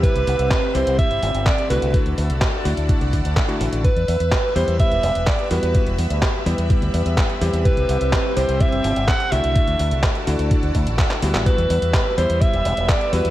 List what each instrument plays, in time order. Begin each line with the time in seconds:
Already playing: electric grand piano C3 G3 C4 E4 G4, string machine E5 B5 E6
0.03 string machine C4, alto saxophone B4, kick, closed hi-hat
0.15 fingered electric bass C2, closed hi-hat
0.27 fingered electric bass C2, open hi-hat
0.39 fingered electric bass C2, closed hi-hat
0.51 kick, clap, closed hi-hat
0.75 fingered electric bass C2, electric grand piano C3 G3 C4 E4 G4, alto saxophone C5, open hi-hat
0.87 fingered electric bass C2, closed hi-hat
0.99 alto saxophone E5, kick, closed hi-hat
1.10 fingered electric bass G1, closed hi-hat
1.23 fingered electric bass G1, open hi-hat
1.34 fingered electric bass G1, closed hi-hat
1.46 alto saxophone D5, kick, clap, closed hi-hat
1.58 closed hi-hat
1.70 fingered electric bass C2, electric grand piano D3 A3 D4 E4 F#4, alto saxophone B4, open hi-hat
1.82 fingered electric bass C2, closed hi-hat
1.94 string machine D5 F#5 A5, kick, closed hi-hat
2.06 fingered electric bass D2, closed hi-hat
2.18 fingered electric bass D2, open hi-hat
2.30 fingered electric bass C2, closed hi-hat
2.42 kick, clap, closed hi-hat
2.65 fingered electric bass D2, electric grand piano D3 A3 D4 E4 F#4, open hi-hat
2.77 fingered electric bass D2, closed hi-hat
2.89 kick, closed hi-hat
3.01 fingered electric bass C2, closed hi-hat
3.13 fingered electric bass D2, kick, open hi-hat
3.25 fingered electric bass D2, closed hi-hat
3.37 kick, clap, closed hi-hat
3.48 electric grand piano D3 A3 D4 E4 F#4, closed hi-hat
3.61 fingered electric bass A1, open hi-hat
3.72 fingered electric bass A1, closed hi-hat
3.84 string machine B4 E5 B5, alto saxophone B4, kick, closed hi-hat
3.96 fingered electric bass E2, closed hi-hat
4.08 fingered electric bass E2, open hi-hat
4.20 fingered electric bass E2, closed hi-hat
4.32 kick, clap, closed hi-hat
4.55 fingered electric bass E2, electric grand piano G3 B3 E4 G4, alto saxophone C5, open hi-hat
4.68 fingered electric bass E2, closed hi-hat
4.80 alto saxophone E5, kick, closed hi-hat
4.91 fingered electric bass E1, closed hi-hat
5.03 fingered electric bass E1, open hi-hat
5.15 fingered electric bass E1, closed hi-hat
5.27 alto saxophone D5, kick, clap, closed hi-hat
5.39 closed hi-hat
5.51 fingered electric bass E2, electric grand piano G3 B3 E4 F#4, alto saxophone B4, open hi-hat
5.63 fingered electric bass E2, closed hi-hat
5.75 kick, closed hi-hat
5.87 fingered electric bass E1, closed hi-hat
5.98 fingered electric bass E2, open hi-hat
6.10 fingered electric bass D2, closed hi-hat
6.22 kick, clap, closed hi-hat
6.46 fingered electric bass E2, electric grand piano G3 B3 E4 G4, open hi-hat
6.58 fingered electric bass E2, closed hi-hat
6.70 kick, closed hi-hat
6.82 fingered electric bass D2, closed hi-hat
6.94 fingered electric bass E2, open hi-hat
7.06 fingered electric bass E2, closed hi-hat
7.18 kick, clap, closed hi-hat
7.30 closed hi-hat
7.41 fingered electric bass E2, electric grand piano C3 G3 C4 E4 G4, open hi-hat
7.53 fingered electric bass E2, closed hi-hat
7.65 string machine C4 G5 E6, alto saxophone B4, kick, closed hi-hat
7.77 fingered electric bass C2, closed hi-hat
7.89 fingered electric bass C2, open hi-hat
8.01 fingered electric bass C2, closed hi-hat
8.13 kick, clap, closed hi-hat
8.37 fingered electric bass C2, electric grand piano C3 G3 C4 E4 G4, alto saxophone C5, open hi-hat
8.49 fingered electric bass C2, closed hi-hat
8.60 alto saxophone E5, kick, closed hi-hat
8.72 fingered electric bass G1, closed hi-hat
8.84 fingered electric bass G1, open hi-hat
8.96 fingered electric bass G1, closed hi-hat
9.08 alto saxophone F#5, kick, clap, closed hi-hat
9.20 closed hi-hat
9.32 fingered electric bass C2, electric grand piano D3 A3 D4 E4 F#4, alto saxophone E5, open hi-hat
9.44 fingered electric bass C2, closed hi-hat
9.56 string machine D5 F#5 A5, kick, closed hi-hat
9.68 fingered electric bass D2, closed hi-hat
9.79 fingered electric bass D2, open hi-hat
9.91 fingered electric bass C2, closed hi-hat
10.03 kick, clap, closed hi-hat
10.15 closed hi-hat
10.27 fingered electric bass D2, electric grand piano D3 A3 D4 E4 F#4, open hi-hat
10.39 fingered electric bass D2, closed hi-hat
10.51 kick, closed hi-hat
10.63 fingered electric bass D2, closed hi-hat
10.75 fingered electric bass D2, kick, open hi-hat
10.87 fingered electric bass A1, closed hi-hat
10.99 kick, clap, closed hi-hat
11.11 clap, closed hi-hat
11.22 fingered electric bass D2, electric grand piano G3 B3 E4 F#4, open hi-hat
11.34 fingered electric bass A1, clap, closed hi-hat
11.46 alto saxophone B4, string machine B4 E5, kick, closed hi-hat
11.58 fingered electric bass E2, closed hi-hat
11.70 fingered electric bass E2, open hi-hat
11.82 fingered electric bass E2, closed hi-hat
11.94 kick, clap, closed hi-hat
12.18 fingered electric bass E2, electric grand piano G3 B3 E4 G4, alto saxophone C5, open hi-hat
12.30 fingered electric bass E2, closed hi-hat
12.41 alto saxophone E5, kick, closed hi-hat
12.53 fingered electric bass E1, closed hi-hat
12.65 fingered electric bass E1, open hi-hat
12.77 fingered electric bass E1, closed hi-hat
12.89 alto saxophone D5, kick, clap, closed hi-hat
13.01 closed hi-hat
13.13 fingered electric bass E2, electric grand piano G3 B3 E4 F#4, alto saxophone B4, open hi-hat
13.25 fingered electric bass E2, closed hi-hat